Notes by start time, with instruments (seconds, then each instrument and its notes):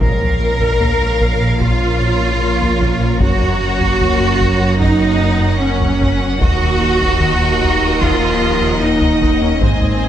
0.00 double bass section A#1, sub bass A#1, analog synth bass A#2, ambient pad F3 A#3 A#4 C#5, french horn section A#3 C#4, viola section A#4, violin section A#4 C#5 F5, cello section A#4, taiko
0.21 analog synth bass A#2, taiko low
0.40 analog synth bass A#2
0.60 analog synth bass A#2, taiko
0.81 analog synth bass A#3, taiko low
1.01 analog synth bass A#2
1.21 analog synth bass A#2, taiko
1.41 analog synth bass A#2
1.61 analog synth bass A#2, cello section F4, viola section F4, taiko
1.81 analog synth bass A#2
2.01 analog synth bass A#2
2.21 analog synth bass A#2
2.41 analog synth bass A#2
2.61 analog synth bass A#3, taiko low
2.81 analog synth bass A#2, taiko
3.01 analog synth bass A#2
3.20 sub bass F#1, analog synth bass F#2, double bass section F#2, ambient pad F#3, cello section F#4, viola section F#4, violin section F#5, taiko
3.41 analog synth bass F#2, taiko low
3.61 analog synth bass F#2
3.81 analog synth bass F#2, taiko
4.01 analog synth bass F#3, taiko low
4.20 analog synth bass F#2
4.41 analog synth bass F#2, taiko
4.61 analog synth bass F#2
4.80 analog synth bass F#2, viola section D#4, cello section D#4, taiko
5.01 analog synth bass F#2
5.20 analog synth bass F#2
5.40 analog synth bass F#2
5.60 analog synth bass F#2, cello section C#4, viola section C#4
5.80 analog synth bass F#3, taiko low
6.01 analog synth bass F#2, taiko
6.21 analog synth bass F#2
6.40 sub bass D#1, analog synth bass D#2, double bass section D#2, ambient pad D#3 A#3 A#4 D#5, french horn section A#3 D#4, cello section F#4, viola section F#4, violin section A#4 D#5, taiko
6.60 analog synth bass D#2, taiko low
6.80 analog synth bass D#2
7.01 analog synth bass D#2, taiko
7.21 analog synth bass D#3, taiko low
7.41 analog synth bass D#2
7.61 analog synth bass D#2, taiko
7.81 analog synth bass D#2
8.01 analog synth bass D#2, viola section F3, cello section F4, taiko
8.21 analog synth bass D#2
8.42 analog synth bass D#2
8.61 analog synth bass D#2
8.81 analog synth bass D#2, viola section D#4, cello section D#4
9.01 analog synth bass D#3, taiko low
9.21 analog synth bass D#2, viola section D#4, cello section D#4, taiko
9.41 analog synth bass D#2, viola section C#4, cello section C#4
9.61 double bass section G#1, sub bass G#1, analog synth bass G#2, french horn section G#3, viola section C4, cello section C4, ambient pad C4 G#4, violin section C5 G#5, taiko
9.82 analog synth bass G#2, taiko low
10.02 analog synth bass G#2